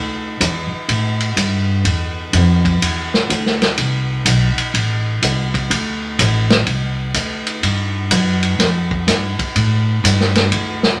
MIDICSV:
0, 0, Header, 1, 4, 480
1, 0, Start_track
1, 0, Tempo, 481155
1, 1846, Time_signature, 4, 2, 24, 8
1, 10974, End_track
2, 0, Start_track
2, 0, Title_t, "Upright bass"
2, 0, Program_c, 0, 32
2, 0, Note_on_c, 0, 38, 88
2, 389, Note_off_c, 0, 38, 0
2, 404, Note_on_c, 0, 40, 107
2, 699, Note_off_c, 0, 40, 0
2, 883, Note_on_c, 0, 45, 84
2, 1350, Note_off_c, 0, 45, 0
2, 1361, Note_on_c, 0, 43, 84
2, 1829, Note_off_c, 0, 43, 0
2, 1842, Note_on_c, 0, 40, 85
2, 2309, Note_off_c, 0, 40, 0
2, 2325, Note_on_c, 0, 41, 100
2, 2791, Note_off_c, 0, 41, 0
2, 2811, Note_on_c, 0, 40, 82
2, 3275, Note_off_c, 0, 40, 0
2, 3288, Note_on_c, 0, 38, 90
2, 3753, Note_off_c, 0, 38, 0
2, 3772, Note_on_c, 0, 36, 80
2, 4236, Note_off_c, 0, 36, 0
2, 4243, Note_on_c, 0, 35, 94
2, 4539, Note_off_c, 0, 35, 0
2, 4727, Note_on_c, 0, 33, 82
2, 5193, Note_off_c, 0, 33, 0
2, 5211, Note_on_c, 0, 36, 80
2, 5675, Note_off_c, 0, 36, 0
2, 5689, Note_on_c, 0, 38, 85
2, 6154, Note_off_c, 0, 38, 0
2, 6175, Note_on_c, 0, 33, 101
2, 6638, Note_off_c, 0, 33, 0
2, 6651, Note_on_c, 0, 36, 78
2, 7116, Note_off_c, 0, 36, 0
2, 7125, Note_on_c, 0, 38, 87
2, 7592, Note_off_c, 0, 38, 0
2, 7610, Note_on_c, 0, 43, 90
2, 8075, Note_off_c, 0, 43, 0
2, 8090, Note_on_c, 0, 42, 107
2, 8554, Note_off_c, 0, 42, 0
2, 8568, Note_on_c, 0, 41, 82
2, 9033, Note_off_c, 0, 41, 0
2, 9049, Note_on_c, 0, 43, 87
2, 9342, Note_off_c, 0, 43, 0
2, 9532, Note_on_c, 0, 45, 93
2, 9995, Note_off_c, 0, 45, 0
2, 10014, Note_on_c, 0, 43, 105
2, 10475, Note_off_c, 0, 43, 0
2, 10493, Note_on_c, 0, 38, 85
2, 10953, Note_off_c, 0, 38, 0
2, 10974, End_track
3, 0, Start_track
3, 0, Title_t, "Muted upright bass strokes"
3, 712, Note_on_c, 9, 29, 41
3, 811, Note_off_c, 9, 29, 0
3, 4547, Note_on_c, 9, 29, 42
3, 4647, Note_off_c, 9, 29, 0
3, 9367, Note_on_c, 9, 29, 39
3, 9467, Note_off_c, 9, 29, 0
3, 10974, End_track
4, 0, Start_track
4, 0, Title_t, "Drums"
4, 405, Note_on_c, 9, 36, 26
4, 406, Note_on_c, 9, 44, 70
4, 406, Note_on_c, 9, 51, 71
4, 505, Note_off_c, 9, 36, 0
4, 506, Note_off_c, 9, 44, 0
4, 506, Note_off_c, 9, 51, 0
4, 885, Note_on_c, 9, 36, 26
4, 886, Note_on_c, 9, 51, 64
4, 985, Note_off_c, 9, 36, 0
4, 986, Note_off_c, 9, 51, 0
4, 1202, Note_on_c, 9, 51, 45
4, 1301, Note_off_c, 9, 51, 0
4, 1364, Note_on_c, 9, 36, 22
4, 1366, Note_on_c, 9, 44, 63
4, 1366, Note_on_c, 9, 51, 70
4, 1464, Note_off_c, 9, 36, 0
4, 1465, Note_off_c, 9, 44, 0
4, 1465, Note_off_c, 9, 51, 0
4, 1845, Note_on_c, 9, 36, 25
4, 1845, Note_on_c, 9, 51, 61
4, 1945, Note_off_c, 9, 36, 0
4, 1945, Note_off_c, 9, 51, 0
4, 2325, Note_on_c, 9, 44, 55
4, 2325, Note_on_c, 9, 51, 73
4, 2326, Note_on_c, 9, 36, 28
4, 2425, Note_off_c, 9, 44, 0
4, 2425, Note_off_c, 9, 51, 0
4, 2426, Note_off_c, 9, 36, 0
4, 2645, Note_on_c, 9, 36, 61
4, 2647, Note_on_c, 9, 51, 47
4, 2744, Note_off_c, 9, 36, 0
4, 2747, Note_off_c, 9, 51, 0
4, 2810, Note_on_c, 9, 36, 23
4, 2815, Note_on_c, 9, 51, 73
4, 2910, Note_off_c, 9, 36, 0
4, 2915, Note_off_c, 9, 51, 0
4, 3132, Note_on_c, 9, 38, 43
4, 3232, Note_off_c, 9, 38, 0
4, 3291, Note_on_c, 9, 36, 19
4, 3293, Note_on_c, 9, 44, 52
4, 3293, Note_on_c, 9, 51, 69
4, 3391, Note_off_c, 9, 36, 0
4, 3393, Note_off_c, 9, 44, 0
4, 3393, Note_off_c, 9, 51, 0
4, 3455, Note_on_c, 9, 38, 31
4, 3554, Note_off_c, 9, 38, 0
4, 3608, Note_on_c, 9, 51, 47
4, 3611, Note_on_c, 9, 38, 47
4, 3707, Note_off_c, 9, 51, 0
4, 3711, Note_off_c, 9, 38, 0
4, 3766, Note_on_c, 9, 51, 64
4, 3769, Note_on_c, 9, 36, 23
4, 3866, Note_off_c, 9, 51, 0
4, 3869, Note_off_c, 9, 36, 0
4, 4245, Note_on_c, 9, 44, 67
4, 4245, Note_on_c, 9, 51, 85
4, 4249, Note_on_c, 9, 36, 23
4, 4345, Note_off_c, 9, 44, 0
4, 4345, Note_off_c, 9, 51, 0
4, 4349, Note_off_c, 9, 36, 0
4, 4567, Note_on_c, 9, 51, 53
4, 4667, Note_off_c, 9, 51, 0
4, 4732, Note_on_c, 9, 36, 27
4, 4733, Note_on_c, 9, 51, 66
4, 4831, Note_off_c, 9, 36, 0
4, 4833, Note_off_c, 9, 51, 0
4, 5212, Note_on_c, 9, 44, 66
4, 5212, Note_on_c, 9, 51, 75
4, 5213, Note_on_c, 9, 36, 20
4, 5312, Note_off_c, 9, 44, 0
4, 5312, Note_off_c, 9, 51, 0
4, 5313, Note_off_c, 9, 36, 0
4, 5529, Note_on_c, 9, 36, 54
4, 5534, Note_on_c, 9, 51, 47
4, 5629, Note_off_c, 9, 36, 0
4, 5634, Note_off_c, 9, 51, 0
4, 5693, Note_on_c, 9, 36, 30
4, 5695, Note_on_c, 9, 51, 71
4, 5793, Note_off_c, 9, 36, 0
4, 5794, Note_off_c, 9, 51, 0
4, 6174, Note_on_c, 9, 36, 28
4, 6176, Note_on_c, 9, 44, 71
4, 6176, Note_on_c, 9, 51, 77
4, 6273, Note_off_c, 9, 36, 0
4, 6275, Note_off_c, 9, 44, 0
4, 6275, Note_off_c, 9, 51, 0
4, 6488, Note_on_c, 9, 51, 47
4, 6489, Note_on_c, 9, 38, 72
4, 6587, Note_off_c, 9, 51, 0
4, 6588, Note_off_c, 9, 38, 0
4, 6649, Note_on_c, 9, 51, 61
4, 6651, Note_on_c, 9, 36, 25
4, 6749, Note_off_c, 9, 51, 0
4, 6751, Note_off_c, 9, 36, 0
4, 7126, Note_on_c, 9, 44, 61
4, 7126, Note_on_c, 9, 51, 68
4, 7131, Note_on_c, 9, 36, 24
4, 7226, Note_off_c, 9, 44, 0
4, 7226, Note_off_c, 9, 51, 0
4, 7231, Note_off_c, 9, 36, 0
4, 7448, Note_on_c, 9, 51, 50
4, 7548, Note_off_c, 9, 51, 0
4, 7613, Note_on_c, 9, 36, 26
4, 7613, Note_on_c, 9, 51, 65
4, 7712, Note_off_c, 9, 51, 0
4, 7713, Note_off_c, 9, 36, 0
4, 8088, Note_on_c, 9, 44, 62
4, 8088, Note_on_c, 9, 51, 87
4, 8092, Note_on_c, 9, 36, 28
4, 8188, Note_off_c, 9, 44, 0
4, 8188, Note_off_c, 9, 51, 0
4, 8192, Note_off_c, 9, 36, 0
4, 8405, Note_on_c, 9, 51, 50
4, 8505, Note_off_c, 9, 51, 0
4, 8573, Note_on_c, 9, 36, 23
4, 8575, Note_on_c, 9, 51, 66
4, 8576, Note_on_c, 9, 38, 37
4, 8673, Note_off_c, 9, 36, 0
4, 8675, Note_off_c, 9, 51, 0
4, 8676, Note_off_c, 9, 38, 0
4, 8890, Note_on_c, 9, 36, 57
4, 8990, Note_off_c, 9, 36, 0
4, 9054, Note_on_c, 9, 36, 18
4, 9055, Note_on_c, 9, 44, 63
4, 9055, Note_on_c, 9, 51, 68
4, 9056, Note_on_c, 9, 38, 38
4, 9154, Note_off_c, 9, 36, 0
4, 9155, Note_off_c, 9, 44, 0
4, 9155, Note_off_c, 9, 51, 0
4, 9156, Note_off_c, 9, 38, 0
4, 9370, Note_on_c, 9, 36, 60
4, 9371, Note_on_c, 9, 51, 49
4, 9470, Note_off_c, 9, 36, 0
4, 9471, Note_off_c, 9, 51, 0
4, 9534, Note_on_c, 9, 51, 62
4, 9535, Note_on_c, 9, 36, 25
4, 9633, Note_off_c, 9, 51, 0
4, 9635, Note_off_c, 9, 36, 0
4, 10016, Note_on_c, 9, 36, 27
4, 10022, Note_on_c, 9, 44, 69
4, 10022, Note_on_c, 9, 51, 82
4, 10115, Note_off_c, 9, 36, 0
4, 10122, Note_off_c, 9, 44, 0
4, 10122, Note_off_c, 9, 51, 0
4, 10180, Note_on_c, 9, 38, 28
4, 10279, Note_off_c, 9, 38, 0
4, 10329, Note_on_c, 9, 51, 51
4, 10337, Note_on_c, 9, 38, 48
4, 10429, Note_off_c, 9, 51, 0
4, 10437, Note_off_c, 9, 38, 0
4, 10492, Note_on_c, 9, 51, 68
4, 10493, Note_on_c, 9, 36, 21
4, 10592, Note_off_c, 9, 51, 0
4, 10593, Note_off_c, 9, 36, 0
4, 10807, Note_on_c, 9, 38, 53
4, 10906, Note_off_c, 9, 38, 0
4, 10974, End_track
0, 0, End_of_file